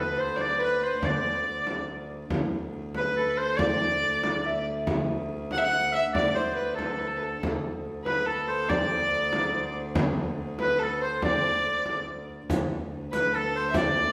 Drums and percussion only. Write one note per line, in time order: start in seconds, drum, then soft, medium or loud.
0.17 frame drum soft
0.38 frame drum medium
1.02 frame drum medium
1.67 frame drum medium
2.30 frame drum medium
2.73 frame drum soft
2.95 frame drum medium
3.17 frame drum soft
3.59 frame drum medium
4.24 frame drum medium
4.45 frame drum soft
4.87 frame drum medium
5.30 frame drum soft
5.51 frame drum medium
5.73 frame drum soft
6.15 frame drum medium
6.79 frame drum medium
7.00 frame drum soft
7.21 frame drum soft
7.43 frame drum medium
7.85 frame drum soft
8.06 frame drum medium
8.28 frame drum soft
8.70 frame drum medium
9.11 frame drum soft
9.33 frame drum medium
9.54 frame drum soft
9.95 frame drum loud
10.38 frame drum soft
10.59 frame drum medium
10.80 frame drum soft
11.22 frame drum medium
11.86 frame drum medium
12.08 frame drum soft
12.29 frame drum soft
12.50 riq medium
12.50 frame drum medium
12.92 frame drum soft
13.13 riq soft
13.13 frame drum medium
13.33 riq soft
13.33 frame drum soft
13.55 riq soft
13.74 riq medium
13.74 frame drum medium